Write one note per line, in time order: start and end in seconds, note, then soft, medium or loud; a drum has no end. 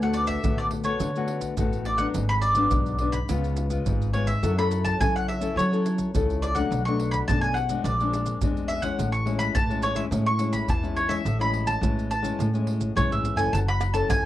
0.00 0.35 D2 loud
0.00 0.41 D3 medium
0.00 0.40 A3 medium
0.00 0.40 B3 medium
0.00 0.40 F#4 medium
0.00 0.15 F#5 medium
0.00 pandeiro soft
0.00 maracas soft
0.13 0.29 D5 medium
0.13 pandeiro medium
0.13 maracas medium
0.27 0.58 E5 medium
0.27 pandeiro medium
0.27 maracas medium
0.27 surdo soft
0.44 0.98 A2 soft
0.44 0.92 D3 medium
0.44 0.82 A3 medium
0.44 0.82 B3 soft
0.44 0.82 F#4 medium
0.44 pandeiro medium
0.44 maracas medium
0.44 surdo loud
0.58 0.66 D5 medium
0.58 pandeiro soft
0.58 maracas soft
0.71 pandeiro medium
0.84 1.09 A3 medium
0.84 1.10 B3 medium
0.84 1.10 F#4 medium
0.84 1.38 C#5 medium
0.84 pandeiro medium
0.84 maracas medium
0.84 surdo soft
1.00 1.49 D3 loud
1.00 1.55 D3 medium
1.00 pandeiro medium
1.00 maracas medium
1.00 surdo medium
1.16 1.54 A3 medium
1.16 1.54 B3 medium
1.16 1.54 F#4 medium
1.16 pandeiro soft
1.16 maracas soft
1.28 pandeiro medium
1.41 pandeiro medium
1.41 maracas medium
1.41 surdo soft
1.57 2.06 A1 medium
1.57 2.12 A2 medium
1.57 1.96 A3 medium
1.57 1.96 B3 medium
1.57 1.97 F#4 medium
1.57 pandeiro medium
1.57 maracas medium
1.57 surdo medium
1.73 pandeiro soft
1.73 maracas soft
1.85 2.01 D5 medium
1.85 pandeiro medium
1.98 2.23 F#3 medium
1.98 2.24 B3 medium
1.98 2.24 D4 medium
1.98 2.06 F#5 medium
1.98 pandeiro medium
1.98 maracas medium
1.98 surdo soft
2.14 2.64 G#1 medium
2.14 2.69 G#2 medium
2.14 pandeiro medium
2.14 maracas medium
2.14 surdo medium
2.29 2.34 B5 loud
2.29 pandeiro soft
2.29 maracas soft
2.42 3.10 D5 medium
2.42 pandeiro medium
2.42 maracas medium
2.55 2.95 F#3 medium
2.55 2.95 B3 medium
2.55 2.95 D4 medium
2.55 pandeiro medium
2.55 maracas medium
2.55 surdo soft
2.71 3.20 B1 medium
2.71 3.26 G#2 medium
2.71 pandeiro medium
2.71 maracas medium
2.71 surdo loud
2.86 pandeiro soft
2.86 maracas soft
2.99 3.17 F#3 medium
2.99 3.17 B3 medium
2.99 3.17 D4 medium
2.99 pandeiro medium
3.12 3.81 B5 medium
3.12 pandeiro medium
3.12 maracas medium
3.12 surdo soft
3.29 3.78 C#2 loud
3.29 3.83 C#3 medium
3.29 3.67 G#3 medium
3.29 3.67 B3 medium
3.29 3.68 F4 medium
3.29 pandeiro medium
3.29 maracas medium
3.29 surdo medium
3.44 pandeiro soft
3.44 maracas soft
3.57 pandeiro medium
3.57 maracas medium
3.70 4.09 G#3 medium
3.70 4.09 B3 medium
3.70 4.09 F4 medium
3.70 pandeiro medium
3.70 maracas medium
3.70 surdo soft
3.86 4.35 G#1 medium
3.86 4.40 G#2 medium
3.86 pandeiro medium
3.86 maracas medium
3.86 surdo medium
4.02 pandeiro soft
4.02 maracas soft
4.14 4.31 G#3 soft
4.14 4.31 B3 soft
4.14 4.31 F4 medium
4.14 4.27 C#5 medium
4.14 pandeiro medium
4.27 4.57 E5 medium
4.27 pandeiro medium
4.27 maracas medium
4.27 surdo soft
4.43 4.91 F#2 medium
4.43 4.97 F#3 medium
4.43 4.52 C#4 medium
4.43 4.53 E4 soft
4.43 4.53 A4 soft
4.43 pandeiro medium
4.43 maracas medium
4.43 surdo medium
4.58 4.96 C#4 medium
4.58 4.96 E4 medium
4.58 4.96 A4 medium
4.58 4.84 B5 loud
4.58 pandeiro soft
4.58 maracas soft
4.71 pandeiro medium
4.71 maracas medium
4.85 5.00 A5 medium
4.85 pandeiro medium
4.85 maracas medium
4.85 surdo soft
4.99 5.54 C#3 medium
4.99 5.48 F#3 medium
4.99 5.38 C#4 soft
4.99 5.38 E4 medium
4.99 5.38 A4 medium
4.99 5.13 G#5 medium
4.99 pandeiro medium
4.99 maracas medium
4.99 surdo loud
5.16 5.28 F#5 medium
5.16 pandeiro soft
5.16 maracas soft
5.28 5.55 E5 medium
5.28 pandeiro medium
5.41 5.66 C#4 medium
5.41 5.66 E4 medium
5.41 5.66 A4 medium
5.41 pandeiro medium
5.41 maracas medium
5.41 surdo soft
5.56 6.05 F#3 medium
5.56 6.11 F#3 medium
5.56 6.10 C#5 medium
5.56 pandeiro medium
5.56 maracas medium
5.56 surdo medium
5.72 6.10 C#4 medium
5.72 6.10 E4 medium
5.72 6.10 A4 medium
5.72 pandeiro soft
5.72 maracas soft
5.86 pandeiro medium
5.86 maracas medium
5.98 pandeiro medium
5.98 maracas medium
5.98 surdo soft
6.14 6.63 C#2 medium
6.14 6.68 C#3 medium
6.14 6.52 C#4 medium
6.14 6.53 E4 medium
6.14 6.53 A4 medium
6.14 pandeiro medium
6.14 maracas medium
6.14 surdo medium
6.30 pandeiro soft
6.30 maracas soft
6.42 6.56 D5 medium
6.42 pandeiro medium
6.42 maracas medium
6.55 6.80 F#3 medium
6.55 6.80 A3 medium
6.55 6.80 D4 medium
6.55 6.82 F#5 medium
6.55 pandeiro medium
6.55 maracas medium
6.55 surdo soft
6.71 7.19 B1 medium
6.71 7.25 B2 medium
6.71 pandeiro medium
6.71 maracas medium
6.71 surdo medium
6.85 7.24 F#3 medium
6.85 7.25 A3 medium
6.85 7.25 D4 medium
6.85 7.11 C#6 medium
6.85 pandeiro soft
6.85 maracas soft
7.00 pandeiro medium
7.11 7.16 B5 medium
7.11 pandeiro medium
7.11 maracas medium
7.11 surdo soft
7.28 7.83 F#2 medium
7.28 7.76 B2 medium
7.28 7.55 F#3 medium
7.28 7.55 A3 soft
7.28 7.56 D4 medium
7.28 7.41 A5 loud
7.28 pandeiro medium
7.28 maracas medium
7.28 surdo loud
7.41 7.55 G#5 medium
7.41 pandeiro soft
7.41 maracas soft
7.54 7.81 F#5 medium
7.54 pandeiro medium
7.69 7.94 G#3 medium
7.69 7.94 C4 medium
7.69 7.94 D4 medium
7.69 pandeiro medium
7.69 maracas medium
7.69 surdo soft
7.84 8.33 A#1 loud
7.84 8.39 A#2 medium
7.84 8.37 D5 medium
7.84 pandeiro medium
7.84 maracas medium
7.84 surdo medium
8.00 8.38 G#3 medium
8.00 8.38 C4 medium
8.00 8.38 D4 medium
8.00 pandeiro soft
8.00 maracas soft
8.13 pandeiro medium
8.13 maracas medium
8.26 pandeiro medium
8.26 maracas medium
8.26 surdo soft
8.41 8.90 E2 medium
8.41 8.81 G#3 medium
8.41 8.81 C4 medium
8.41 8.81 D4 medium
8.41 pandeiro medium
8.41 maracas medium
8.41 surdo medium
8.57 pandeiro soft
8.57 maracas soft
8.68 8.82 E5 medium
8.68 pandeiro medium
8.68 maracas medium
8.82 9.07 G#3 medium
8.82 9.08 C#4 medium
8.82 9.08 E4 medium
8.82 9.10 F#5 medium
8.82 pandeiro medium
8.82 maracas medium
8.82 surdo soft
8.98 9.47 A1 medium
8.98 9.53 A2 medium
8.98 pandeiro medium
8.98 maracas medium
8.98 surdo medium
9.12 9.38 C#6 medium
9.12 pandeiro soft
9.12 maracas soft
9.25 9.53 G#3 medium
9.25 9.53 C#4 medium
9.25 9.53 E4 medium
9.25 pandeiro medium
9.39 9.54 B5 medium
9.39 pandeiro medium
9.39 maracas medium
9.39 surdo soft
9.55 10.04 A2 medium
9.55 10.10 E3 soft
9.55 9.82 A5 loud
9.55 pandeiro medium
9.55 maracas medium
9.55 surdo loud
9.70 9.94 G#3 medium
9.70 9.94 C#4 medium
9.70 9.94 E4 medium
9.70 pandeiro soft
9.70 maracas soft
9.83 9.98 C#5 medium
9.83 pandeiro medium
9.83 maracas medium
9.95 10.06 G#3 medium
9.95 10.06 C#4 medium
9.95 10.06 E4 medium
9.95 10.04 E5 medium
9.95 pandeiro medium
9.95 maracas medium
9.95 surdo soft
10.11 10.60 A2 loud
10.11 10.66 A2 medium
10.11 10.29 G#3 medium
10.11 10.29 C#4 medium
10.11 10.29 E4 medium
10.11 pandeiro medium
10.11 maracas medium
10.11 surdo medium
10.26 10.52 C#6 medium
10.26 pandeiro soft
10.26 maracas soft
10.39 10.67 G#3 medium
10.39 10.67 C#4 medium
10.39 10.67 E4 medium
10.39 pandeiro medium
10.39 maracas medium
10.53 10.69 B5 medium
10.53 pandeiro medium
10.53 maracas medium
10.53 surdo soft
10.68 11.17 E2 medium
10.68 11.23 E3 medium
10.68 10.96 A5 medium
10.68 pandeiro medium
10.68 maracas medium
10.68 surdo medium
10.83 11.07 G#3 medium
10.83 11.07 C#4 medium
10.83 11.07 E4 medium
10.83 pandeiro soft
10.83 maracas soft
10.96 11.12 C#5 medium
10.96 pandeiro medium
11.08 11.20 G#3 medium
11.08 11.20 C#4 medium
11.08 11.20 E4 medium
11.08 11.37 E5 medium
11.08 pandeiro medium
11.08 maracas medium
11.08 surdo soft
11.25 11.74 A1 medium
11.25 11.79 A2 medium
11.25 pandeiro medium
11.25 maracas medium
11.25 surdo medium
11.39 11.78 G#3 medium
11.39 11.78 C#4 medium
11.39 11.78 E4 medium
11.39 11.67 B5 medium
11.39 pandeiro soft
11.39 maracas soft
11.54 pandeiro medium
11.67 12.07 A5 medium
11.67 pandeiro medium
11.67 maracas medium
11.67 surdo soft
11.81 12.30 A2 medium
11.81 12.36 E3 medium
11.81 12.09 G#3 medium
11.81 12.09 C#4 medium
11.81 12.09 E4 medium
11.81 pandeiro medium
11.81 maracas medium
11.81 surdo loud
11.99 pandeiro soft
11.99 maracas soft
12.11 13.21 A5 medium
12.11 pandeiro medium
12.11 maracas medium
12.22 12.48 G#3 medium
12.22 12.48 C#4 medium
12.22 12.48 E4 medium
12.22 pandeiro medium
12.22 maracas medium
12.22 surdo soft
12.38 12.93 A2 medium
12.38 12.88 A2 loud
12.38 pandeiro medium
12.38 maracas medium
12.38 surdo medium
12.54 12.92 G#3 medium
12.54 12.92 C#4 medium
12.54 12.92 E4 medium
12.54 pandeiro soft
12.54 maracas soft
12.67 pandeiro medium
12.81 pandeiro medium
12.81 maracas medium
12.81 surdo soft
12.95 13.09 B1 medium
12.95 13.50 E3 medium
12.95 13.34 G#3 medium
12.95 13.34 C#4 medium
12.95 13.35 E4 medium
12.95 13.11 C#5 medium
12.95 pandeiro medium
12.95 maracas medium
12.95 surdo medium
13.11 13.22 A1 medium
13.11 13.38 E5 medium
13.11 pandeiro soft
13.11 maracas soft
13.23 13.36 G#1 medium
13.23 pandeiro medium
13.23 maracas medium
13.36 13.50 F#1 medium
13.36 13.62 C#4 medium
13.36 13.62 E4 medium
13.36 13.62 A4 medium
13.36 13.51 G#5 medium
13.36 pandeiro medium
13.36 maracas medium
13.36 surdo soft
13.53 14.01 F#1 medium
13.53 14.07 F#3 medium
13.53 13.58 A5 loud
13.53 pandeiro medium
13.53 maracas medium
13.53 surdo medium
13.69 13.93 B5 medium
13.69 pandeiro soft
13.69 tamborim medium
13.69 maracas soft
13.81 pandeiro medium
13.81 tamborim medium
13.81 maracas medium
13.94 14.25 C#4 medium
13.94 14.25 E4 medium
13.94 14.25 A4 medium
13.94 14.09 A5 medium
13.94 pandeiro medium
13.94 maracas medium
13.94 surdo soft
14.09 14.25 C#2 medium
14.09 14.25 C#3 medium
14.09 14.23 G#5 loud
14.09 pandeiro medium
14.09 tamborim medium
14.09 maracas medium
14.09 surdo loud